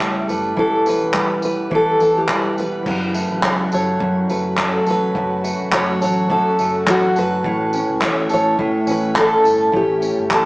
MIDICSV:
0, 0, Header, 1, 6, 480
1, 0, Start_track
1, 0, Tempo, 573066
1, 478, Time_signature, 4, 2, 24, 8
1, 8756, End_track
2, 0, Start_track
2, 0, Title_t, "Steel-string acoustic guitar"
2, 0, Program_c, 0, 25
2, 0, Note_on_c, 0, 76, 112
2, 246, Note_off_c, 0, 76, 0
2, 249, Note_on_c, 0, 71, 88
2, 467, Note_off_c, 0, 71, 0
2, 494, Note_on_c, 0, 69, 97
2, 733, Note_off_c, 0, 69, 0
2, 745, Note_on_c, 0, 71, 94
2, 1179, Note_off_c, 0, 71, 0
2, 1212, Note_on_c, 0, 71, 75
2, 1452, Note_off_c, 0, 71, 0
2, 1466, Note_on_c, 0, 69, 100
2, 1683, Note_off_c, 0, 69, 0
2, 1693, Note_on_c, 0, 69, 86
2, 1821, Note_off_c, 0, 69, 0
2, 1824, Note_on_c, 0, 67, 73
2, 2141, Note_off_c, 0, 67, 0
2, 2175, Note_on_c, 0, 71, 94
2, 2885, Note_off_c, 0, 71, 0
2, 2889, Note_on_c, 0, 73, 101
2, 2952, Note_off_c, 0, 73, 0
2, 3134, Note_on_c, 0, 73, 85
2, 3605, Note_off_c, 0, 73, 0
2, 3608, Note_on_c, 0, 71, 80
2, 3826, Note_off_c, 0, 71, 0
2, 3868, Note_on_c, 0, 69, 87
2, 4099, Note_off_c, 0, 69, 0
2, 4106, Note_on_c, 0, 71, 90
2, 4777, Note_off_c, 0, 71, 0
2, 4806, Note_on_c, 0, 73, 93
2, 5045, Note_off_c, 0, 73, 0
2, 5055, Note_on_c, 0, 73, 82
2, 5283, Note_off_c, 0, 73, 0
2, 5287, Note_on_c, 0, 69, 92
2, 5776, Note_off_c, 0, 69, 0
2, 5777, Note_on_c, 0, 66, 99
2, 6014, Note_off_c, 0, 66, 0
2, 6018, Note_on_c, 0, 71, 98
2, 6737, Note_off_c, 0, 71, 0
2, 6740, Note_on_c, 0, 73, 94
2, 6972, Note_off_c, 0, 73, 0
2, 6982, Note_on_c, 0, 73, 92
2, 7417, Note_off_c, 0, 73, 0
2, 7460, Note_on_c, 0, 71, 96
2, 7691, Note_off_c, 0, 71, 0
2, 7695, Note_on_c, 0, 69, 102
2, 8033, Note_off_c, 0, 69, 0
2, 8176, Note_on_c, 0, 67, 94
2, 8660, Note_on_c, 0, 69, 97
2, 8662, Note_off_c, 0, 67, 0
2, 8756, Note_off_c, 0, 69, 0
2, 8756, End_track
3, 0, Start_track
3, 0, Title_t, "Ambient pad"
3, 0, Program_c, 1, 92
3, 0, Note_on_c, 1, 57, 72
3, 0, Note_on_c, 1, 61, 67
3, 0, Note_on_c, 1, 67, 73
3, 464, Note_off_c, 1, 57, 0
3, 465, Note_off_c, 1, 61, 0
3, 466, Note_off_c, 1, 67, 0
3, 478, Note_on_c, 1, 71, 77
3, 481, Note_on_c, 1, 64, 68
3, 484, Note_on_c, 1, 52, 71
3, 484, Note_on_c, 1, 78, 66
3, 489, Note_on_c, 1, 67, 65
3, 2379, Note_off_c, 1, 71, 0
3, 2380, Note_off_c, 1, 64, 0
3, 2381, Note_off_c, 1, 78, 0
3, 2382, Note_off_c, 1, 52, 0
3, 2384, Note_off_c, 1, 67, 0
3, 2394, Note_on_c, 1, 61, 67
3, 2397, Note_on_c, 1, 57, 79
3, 2405, Note_on_c, 1, 66, 79
3, 6203, Note_off_c, 1, 57, 0
3, 6207, Note_off_c, 1, 66, 0
3, 6227, Note_on_c, 1, 57, 78
3, 6231, Note_on_c, 1, 64, 88
3, 8756, Note_off_c, 1, 57, 0
3, 8756, Note_off_c, 1, 61, 0
3, 8756, Note_off_c, 1, 64, 0
3, 8756, End_track
4, 0, Start_track
4, 0, Title_t, "Nylon-string guitar"
4, 0, Program_c, 2, 24
4, 0, Note_on_c, 2, 45, 83
4, 0, Note_on_c, 2, 55, 72
4, 0, Note_on_c, 2, 57, 62
4, 0, Note_on_c, 2, 69, 67
4, 224, Note_off_c, 2, 57, 0
4, 234, Note_on_c, 2, 57, 55
4, 473, Note_on_c, 2, 52, 81
4, 529, Note_off_c, 2, 57, 0
4, 531, Note_off_c, 2, 69, 0
4, 536, Note_off_c, 2, 45, 0
4, 721, Note_on_c, 2, 59, 60
4, 953, Note_off_c, 2, 55, 0
4, 956, Note_on_c, 2, 55, 68
4, 1421, Note_off_c, 2, 52, 0
4, 1431, Note_on_c, 2, 52, 83
4, 1904, Note_off_c, 2, 55, 0
4, 1914, Note_on_c, 2, 55, 67
4, 2145, Note_off_c, 2, 59, 0
4, 2155, Note_on_c, 2, 59, 59
4, 2398, Note_on_c, 2, 42, 85
4, 2447, Note_off_c, 2, 52, 0
4, 2449, Note_off_c, 2, 55, 0
4, 2449, Note_off_c, 2, 59, 0
4, 2635, Note_on_c, 2, 57, 61
4, 2878, Note_on_c, 2, 54, 73
4, 3121, Note_on_c, 2, 69, 60
4, 3342, Note_off_c, 2, 42, 0
4, 3352, Note_on_c, 2, 42, 79
4, 3595, Note_off_c, 2, 57, 0
4, 3599, Note_on_c, 2, 57, 56
4, 3835, Note_off_c, 2, 54, 0
4, 3845, Note_on_c, 2, 54, 73
4, 4075, Note_off_c, 2, 69, 0
4, 4078, Note_on_c, 2, 69, 60
4, 4309, Note_off_c, 2, 42, 0
4, 4319, Note_on_c, 2, 42, 80
4, 4552, Note_off_c, 2, 57, 0
4, 4555, Note_on_c, 2, 57, 61
4, 4783, Note_off_c, 2, 54, 0
4, 4793, Note_on_c, 2, 54, 75
4, 5033, Note_off_c, 2, 69, 0
4, 5037, Note_on_c, 2, 69, 68
4, 5268, Note_off_c, 2, 42, 0
4, 5278, Note_on_c, 2, 42, 88
4, 5520, Note_off_c, 2, 57, 0
4, 5523, Note_on_c, 2, 57, 55
4, 5745, Note_off_c, 2, 54, 0
4, 5755, Note_on_c, 2, 54, 77
4, 5992, Note_off_c, 2, 69, 0
4, 5996, Note_on_c, 2, 69, 63
4, 6237, Note_off_c, 2, 42, 0
4, 6241, Note_on_c, 2, 45, 84
4, 6288, Note_off_c, 2, 54, 0
4, 6478, Note_off_c, 2, 57, 0
4, 6481, Note_on_c, 2, 61, 61
4, 6715, Note_on_c, 2, 57, 73
4, 6948, Note_off_c, 2, 69, 0
4, 6951, Note_on_c, 2, 69, 69
4, 7185, Note_off_c, 2, 45, 0
4, 7195, Note_on_c, 2, 45, 88
4, 7421, Note_off_c, 2, 61, 0
4, 7431, Note_on_c, 2, 61, 64
4, 7651, Note_off_c, 2, 57, 0
4, 7662, Note_on_c, 2, 57, 76
4, 7896, Note_off_c, 2, 69, 0
4, 7906, Note_on_c, 2, 69, 66
4, 8133, Note_off_c, 2, 45, 0
4, 8143, Note_on_c, 2, 45, 81
4, 8375, Note_off_c, 2, 61, 0
4, 8385, Note_on_c, 2, 61, 56
4, 8616, Note_off_c, 2, 57, 0
4, 8626, Note_on_c, 2, 57, 71
4, 8756, Note_off_c, 2, 45, 0
4, 8756, Note_off_c, 2, 57, 0
4, 8756, Note_off_c, 2, 61, 0
4, 8756, Note_off_c, 2, 69, 0
4, 8756, End_track
5, 0, Start_track
5, 0, Title_t, "Fingered electric bass"
5, 0, Program_c, 3, 33
5, 0, Note_on_c, 3, 37, 76
5, 196, Note_off_c, 3, 37, 0
5, 234, Note_on_c, 3, 30, 97
5, 433, Note_off_c, 3, 30, 0
5, 483, Note_on_c, 3, 28, 102
5, 786, Note_off_c, 3, 28, 0
5, 851, Note_on_c, 3, 28, 74
5, 1409, Note_off_c, 3, 28, 0
5, 1437, Note_on_c, 3, 40, 94
5, 1634, Note_off_c, 3, 40, 0
5, 1682, Note_on_c, 3, 40, 86
5, 1877, Note_off_c, 3, 40, 0
5, 1916, Note_on_c, 3, 28, 89
5, 2114, Note_off_c, 3, 28, 0
5, 2162, Note_on_c, 3, 28, 82
5, 2357, Note_off_c, 3, 28, 0
5, 2396, Note_on_c, 3, 30, 101
5, 2702, Note_off_c, 3, 30, 0
5, 2773, Note_on_c, 3, 33, 77
5, 2860, Note_off_c, 3, 33, 0
5, 2875, Note_on_c, 3, 37, 73
5, 3073, Note_off_c, 3, 37, 0
5, 3125, Note_on_c, 3, 30, 82
5, 3319, Note_off_c, 3, 30, 0
5, 3358, Note_on_c, 3, 42, 96
5, 3554, Note_off_c, 3, 42, 0
5, 3597, Note_on_c, 3, 30, 88
5, 3990, Note_off_c, 3, 30, 0
5, 4078, Note_on_c, 3, 28, 97
5, 4274, Note_off_c, 3, 28, 0
5, 4312, Note_on_c, 3, 30, 99
5, 4619, Note_off_c, 3, 30, 0
5, 4694, Note_on_c, 3, 28, 81
5, 4780, Note_off_c, 3, 28, 0
5, 4792, Note_on_c, 3, 30, 85
5, 4991, Note_off_c, 3, 30, 0
5, 5041, Note_on_c, 3, 33, 96
5, 5344, Note_off_c, 3, 33, 0
5, 5526, Note_on_c, 3, 30, 99
5, 5719, Note_off_c, 3, 30, 0
5, 5756, Note_on_c, 3, 33, 80
5, 5953, Note_off_c, 3, 33, 0
5, 6002, Note_on_c, 3, 30, 97
5, 6197, Note_off_c, 3, 30, 0
5, 6241, Note_on_c, 3, 33, 103
5, 6544, Note_off_c, 3, 33, 0
5, 6614, Note_on_c, 3, 37, 90
5, 6701, Note_off_c, 3, 37, 0
5, 6718, Note_on_c, 3, 40, 82
5, 6914, Note_off_c, 3, 40, 0
5, 6961, Note_on_c, 3, 33, 78
5, 7156, Note_off_c, 3, 33, 0
5, 7199, Note_on_c, 3, 45, 93
5, 7395, Note_off_c, 3, 45, 0
5, 7432, Note_on_c, 3, 33, 85
5, 7828, Note_off_c, 3, 33, 0
5, 7911, Note_on_c, 3, 31, 97
5, 8111, Note_off_c, 3, 31, 0
5, 8159, Note_on_c, 3, 33, 107
5, 8463, Note_off_c, 3, 33, 0
5, 8528, Note_on_c, 3, 31, 86
5, 8617, Note_off_c, 3, 31, 0
5, 8635, Note_on_c, 3, 33, 80
5, 8756, Note_off_c, 3, 33, 0
5, 8756, End_track
6, 0, Start_track
6, 0, Title_t, "Drums"
6, 0, Note_on_c, 9, 36, 97
6, 0, Note_on_c, 9, 39, 93
6, 83, Note_off_c, 9, 39, 0
6, 84, Note_off_c, 9, 36, 0
6, 244, Note_on_c, 9, 54, 52
6, 328, Note_off_c, 9, 54, 0
6, 479, Note_on_c, 9, 36, 104
6, 563, Note_off_c, 9, 36, 0
6, 720, Note_on_c, 9, 54, 68
6, 804, Note_off_c, 9, 54, 0
6, 952, Note_on_c, 9, 39, 115
6, 957, Note_on_c, 9, 36, 118
6, 1036, Note_off_c, 9, 39, 0
6, 1041, Note_off_c, 9, 36, 0
6, 1192, Note_on_c, 9, 54, 70
6, 1275, Note_off_c, 9, 54, 0
6, 1436, Note_on_c, 9, 36, 116
6, 1520, Note_off_c, 9, 36, 0
6, 1677, Note_on_c, 9, 54, 60
6, 1760, Note_off_c, 9, 54, 0
6, 1914, Note_on_c, 9, 39, 101
6, 1917, Note_on_c, 9, 36, 88
6, 1997, Note_off_c, 9, 39, 0
6, 2001, Note_off_c, 9, 36, 0
6, 2160, Note_on_c, 9, 54, 58
6, 2244, Note_off_c, 9, 54, 0
6, 2395, Note_on_c, 9, 49, 89
6, 2396, Note_on_c, 9, 36, 107
6, 2478, Note_off_c, 9, 49, 0
6, 2480, Note_off_c, 9, 36, 0
6, 2634, Note_on_c, 9, 54, 67
6, 2717, Note_off_c, 9, 54, 0
6, 2873, Note_on_c, 9, 39, 113
6, 2874, Note_off_c, 9, 39, 0
6, 2874, Note_on_c, 9, 39, 97
6, 2875, Note_on_c, 9, 36, 114
6, 2958, Note_off_c, 9, 39, 0
6, 2959, Note_off_c, 9, 36, 0
6, 3114, Note_on_c, 9, 54, 77
6, 3198, Note_off_c, 9, 54, 0
6, 3354, Note_on_c, 9, 36, 115
6, 3438, Note_off_c, 9, 36, 0
6, 3598, Note_on_c, 9, 54, 63
6, 3681, Note_off_c, 9, 54, 0
6, 3831, Note_on_c, 9, 39, 98
6, 3833, Note_off_c, 9, 39, 0
6, 3833, Note_on_c, 9, 39, 101
6, 3835, Note_on_c, 9, 36, 99
6, 3917, Note_off_c, 9, 39, 0
6, 3918, Note_off_c, 9, 36, 0
6, 4075, Note_on_c, 9, 54, 53
6, 4158, Note_off_c, 9, 54, 0
6, 4314, Note_on_c, 9, 36, 113
6, 4398, Note_off_c, 9, 36, 0
6, 4561, Note_on_c, 9, 54, 70
6, 4645, Note_off_c, 9, 54, 0
6, 4793, Note_on_c, 9, 39, 92
6, 4794, Note_off_c, 9, 39, 0
6, 4794, Note_on_c, 9, 39, 108
6, 4796, Note_on_c, 9, 36, 101
6, 4878, Note_off_c, 9, 39, 0
6, 4879, Note_off_c, 9, 36, 0
6, 5040, Note_on_c, 9, 54, 76
6, 5124, Note_off_c, 9, 54, 0
6, 5275, Note_on_c, 9, 36, 113
6, 5359, Note_off_c, 9, 36, 0
6, 5518, Note_on_c, 9, 54, 63
6, 5602, Note_off_c, 9, 54, 0
6, 5756, Note_on_c, 9, 36, 115
6, 5756, Note_on_c, 9, 39, 109
6, 5839, Note_off_c, 9, 36, 0
6, 5840, Note_off_c, 9, 39, 0
6, 5997, Note_on_c, 9, 54, 58
6, 6081, Note_off_c, 9, 54, 0
6, 6235, Note_on_c, 9, 36, 109
6, 6319, Note_off_c, 9, 36, 0
6, 6473, Note_on_c, 9, 54, 78
6, 6557, Note_off_c, 9, 54, 0
6, 6711, Note_on_c, 9, 39, 99
6, 6713, Note_off_c, 9, 39, 0
6, 6713, Note_on_c, 9, 39, 111
6, 6715, Note_on_c, 9, 36, 116
6, 6797, Note_off_c, 9, 39, 0
6, 6798, Note_off_c, 9, 36, 0
6, 6947, Note_on_c, 9, 54, 69
6, 7031, Note_off_c, 9, 54, 0
6, 7193, Note_on_c, 9, 36, 116
6, 7277, Note_off_c, 9, 36, 0
6, 7429, Note_on_c, 9, 54, 74
6, 7513, Note_off_c, 9, 54, 0
6, 7670, Note_on_c, 9, 39, 111
6, 7673, Note_off_c, 9, 39, 0
6, 7673, Note_on_c, 9, 36, 103
6, 7673, Note_on_c, 9, 39, 94
6, 7757, Note_off_c, 9, 36, 0
6, 7757, Note_off_c, 9, 39, 0
6, 7917, Note_on_c, 9, 54, 65
6, 8001, Note_off_c, 9, 54, 0
6, 8155, Note_on_c, 9, 36, 115
6, 8238, Note_off_c, 9, 36, 0
6, 8393, Note_on_c, 9, 54, 68
6, 8477, Note_off_c, 9, 54, 0
6, 8634, Note_on_c, 9, 39, 109
6, 8636, Note_on_c, 9, 36, 115
6, 8640, Note_off_c, 9, 39, 0
6, 8640, Note_on_c, 9, 39, 89
6, 8719, Note_off_c, 9, 36, 0
6, 8724, Note_off_c, 9, 39, 0
6, 8756, End_track
0, 0, End_of_file